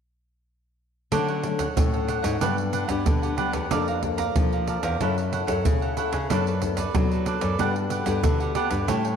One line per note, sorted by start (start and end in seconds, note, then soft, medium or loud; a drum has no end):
1.11 1.73 D3 soft
1.11 1.67 D3 medium
1.11 1.39 F#3 soft
1.11 1.39 A3 soft
1.11 1.39 C#4 soft
1.11 1.27 D4 medium
1.11 1.27 A4 medium
1.11 1.27 C#5 medium
1.11 1.27 F#5 medium
1.11 pandeiro medium
1.11 surdo medium
1.28 1.42 A4 soft
1.28 1.43 C#5 soft
1.28 1.43 F#5 soft
1.28 pandeiro soft
1.43 1.63 F#3 soft
1.43 1.63 A3 soft
1.43 1.63 C#4 medium
1.43 muted cavaquinho stroke soft
1.43 pandeiro soft
1.58 1.91 A4 soft
1.58 1.91 C#5 medium
1.58 1.91 F#5 medium
1.58 pandeiro medium
1.58 surdo soft
1.76 2.38 A2 soft
1.76 2.18 A2 medium
1.76 2.36 F#3 soft
1.76 2.36 A3 soft
1.76 2.36 C#4 medium
1.76 pandeiro medium
1.76 surdo medium
1.93 2.07 A4 soft
1.93 2.08 C#5 soft
1.93 2.08 F#5 soft
1.93 pandeiro soft
2.07 2.23 D4 soft
2.07 2.23 A4 soft
2.07 2.22 C#5 soft
2.07 2.21 F#5 soft
2.07 pandeiro soft
2.22 2.38 G#2 medium
2.22 2.40 A4 soft
2.22 2.39 C#5 medium
2.22 2.39 F#5 medium
2.22 pandeiro medium
2.22 surdo soft
2.40 3.03 G2 soft
2.40 2.83 G2 medium
2.40 2.85 F#3 medium
2.40 2.85 B3 soft
2.40 2.56 D4 medium
2.40 2.85 D4 soft
2.40 2.56 G4 medium
2.40 2.56 B4 medium
2.40 2.57 F#5 medium
2.40 pandeiro medium
2.40 surdo soft
2.57 muted cavaquinho stroke soft
2.57 pandeiro soft
2.73 2.88 D4 soft
2.73 2.88 G4 soft
2.73 2.87 B4 soft
2.73 2.86 F#5 soft
2.73 pandeiro soft
2.88 3.03 G2 medium
2.88 3.33 B3 medium
2.88 3.33 D4 medium
2.88 3.21 G4 soft
2.88 3.20 B4 medium
2.88 3.20 F#5 medium
2.88 pandeiro medium
2.88 surdo soft
3.06 3.68 D3 soft
3.06 3.34 D3 medium
3.06 pandeiro medium
3.06 surdo medium
3.22 3.36 G4 soft
3.22 3.37 B4 soft
3.22 3.37 F#5 soft
3.22 pandeiro soft
3.37 3.59 F#3 soft
3.37 3.59 B3 soft
3.37 3.52 D4 medium
3.37 3.59 D4 medium
3.37 3.53 G4 medium
3.37 3.52 B4 medium
3.37 3.51 F#5 medium
3.37 pandeiro medium
3.53 3.68 E2 medium
3.53 3.69 G4 soft
3.53 3.69 B4 soft
3.53 3.69 F#5 soft
3.53 pandeiro medium
3.53 surdo soft
3.70 4.26 F2 medium
3.70 4.32 F3 soft
3.70 3.98 A#3 soft
3.70 3.98 D4 soft
3.70 3.86 A4 medium
3.70 3.99 A4 medium
3.70 3.86 D5 medium
3.70 3.86 F5 medium
3.70 3.86 A#5 medium
3.70 pandeiro medium
3.70 surdo medium
3.87 4.02 D5 soft
3.87 4.03 F5 soft
3.87 4.02 A#5 soft
3.87 pandeiro soft
4.02 4.30 A#3 soft
4.02 4.30 D4 soft
4.02 4.30 A4 soft
4.02 muted cavaquinho stroke soft
4.02 pandeiro soft
4.02 surdo soft
4.18 4.50 D5 medium
4.18 4.50 F5 soft
4.18 4.50 A#5 medium
4.18 pandeiro medium
4.18 surdo soft
4.36 4.77 F3 medium
4.36 4.97 F3 soft
4.36 4.77 A#3 soft
4.36 4.78 D4 soft
4.36 4.78 A4 soft
4.36 pandeiro medium
4.36 surdo medium
4.52 4.66 D5 soft
4.52 4.67 F5 soft
4.52 4.67 A#5 soft
4.52 pandeiro soft
4.67 4.82 A4 soft
4.67 4.83 D5 soft
4.67 4.83 F5 soft
4.67 4.82 A#5 soft
4.67 pandeiro soft
4.83 4.97 E2 medium
4.83 4.99 D5 soft
4.83 4.99 F5 medium
4.83 4.98 A#5 medium
4.83 pandeiro medium
4.83 surdo soft
5.00 5.42 F#2 medium
5.00 5.62 F#3 medium
5.00 5.31 C#4 soft
5.00 5.15 E4 medium
5.00 5.31 E4 soft
5.00 5.16 A4 medium
5.00 5.31 A4 soft
5.00 5.16 C#5 medium
5.00 5.16 F#5 medium
5.00 pandeiro medium
5.00 surdo medium
5.17 muted cavaquinho stroke soft
5.17 pandeiro soft
5.32 5.47 E4 soft
5.32 5.47 A4 soft
5.32 5.46 C#5 soft
5.32 5.46 F#5 soft
5.32 pandeiro soft
5.47 5.62 F#2 medium
5.47 5.92 C#4 soft
5.47 5.92 E4 medium
5.47 5.80 A4 soft
5.47 5.92 A4 medium
5.47 5.79 C#5 medium
5.47 5.79 F#5 medium
5.47 pandeiro medium
5.47 surdo soft
5.65 5.93 C#3 medium
5.65 6.27 C#3 soft
5.65 pandeiro medium
5.65 surdo medium
5.81 5.96 A4 soft
5.81 5.97 C#5 soft
5.81 5.96 F#5 soft
5.81 pandeiro soft
5.97 6.18 C#4 medium
5.97 6.12 E4 medium
5.97 6.18 E4 soft
5.97 6.12 A4 medium
5.97 6.18 A4 medium
5.97 6.12 C#5 medium
5.97 6.11 F#5 medium
5.97 pandeiro soft
6.12 6.27 C#3 medium
6.12 6.29 A4 soft
6.12 6.28 C#5 soft
6.12 6.28 F#5 soft
6.12 pandeiro medium
6.12 surdo soft
6.30 6.85 F#2 medium
6.30 6.91 F#3 soft
6.30 6.49 B3 medium
6.30 6.45 D4 medium
6.30 6.49 D4 soft
6.30 6.45 A4 medium
6.30 6.49 A4 medium
6.30 6.45 B4 medium
6.30 6.45 D5 medium
6.30 pandeiro medium
6.30 surdo medium
6.47 6.61 A4 soft
6.47 6.61 B4 soft
6.47 6.61 D5 soft
6.47 pandeiro soft
6.62 6.81 B3 soft
6.62 6.81 D4 medium
6.62 6.81 A4 medium
6.62 muted cavaquinho stroke soft
6.62 pandeiro soft
6.62 surdo soft
6.77 7.10 A4 medium
6.77 7.09 B4 medium
6.77 7.09 D5 medium
6.77 pandeiro medium
6.77 surdo soft
6.94 7.56 F#3 soft
6.94 7.36 F#3 medium
6.94 7.54 B3 soft
6.94 7.54 D4 soft
6.94 7.54 A4 medium
6.94 pandeiro medium
6.94 surdo medium
7.11 7.26 A4 soft
7.11 7.26 B4 soft
7.11 7.26 D5 soft
7.11 pandeiro soft
7.26 7.41 D4 soft
7.26 7.42 A4 soft
7.26 7.41 B4 soft
7.26 7.40 D5 medium
7.26 pandeiro medium
7.41 7.56 F#2 medium
7.41 7.58 A4 soft
7.41 7.57 B4 medium
7.41 7.57 D5 medium
7.41 pandeiro medium
7.41 surdo soft
7.59 8.00 G2 medium
7.59 8.20 G3 soft
7.59 8.02 B3 soft
7.59 7.74 D4 medium
7.59 8.02 F#4 medium
7.59 7.74 G4 medium
7.59 8.03 A4 medium
7.59 7.74 B4 medium
7.59 7.74 F#5 medium
7.59 pandeiro medium
7.59 surdo soft
7.75 muted cavaquinho stroke soft
7.75 pandeiro soft
7.90 8.05 D4 soft
7.90 8.06 G4 soft
7.90 8.05 B4 soft
7.90 8.04 F#5 medium
7.90 pandeiro soft
8.06 8.20 G2 medium
8.06 8.50 B3 medium
8.06 8.50 F#4 medium
8.06 8.38 G4 soft
8.06 8.50 A4 medium
8.06 8.38 B4 medium
8.06 8.38 F#5 medium
8.06 pandeiro medium
8.06 surdo soft
8.23 8.51 D3 medium
8.23 8.85 D3 soft
8.23 pandeiro medium
8.23 surdo medium
8.40 8.54 G4 soft
8.40 8.55 B4 soft
8.40 8.55 F#5 soft
8.40 pandeiro soft
8.55 8.74 B3 medium
8.55 8.70 D4 medium
8.55 8.75 F#4 soft
8.55 8.70 G4 medium
8.55 8.75 A4 medium
8.55 8.69 B4 medium
8.55 8.69 F#5 medium
8.55 pandeiro medium
8.70 8.85 G2 medium
8.70 8.86 G4 soft
8.70 8.86 B4 soft
8.70 8.86 F#5 soft
8.70 pandeiro medium
8.70 surdo soft
8.87 9.16 A2 soft
8.87 9.16 A2 medium
8.87 9.07 G3 soft
8.87 9.07 C#4 medium
8.87 9.03 E4 medium
8.87 9.08 E4 medium
8.87 9.03 A4 medium
8.87 9.03 C#5 medium
8.87 9.03 G5 medium
8.87 pandeiro medium
8.87 surdo medium
9.04 9.16 A4 soft
9.04 9.16 C#5 soft
9.04 9.16 G5 soft
9.04 pandeiro soft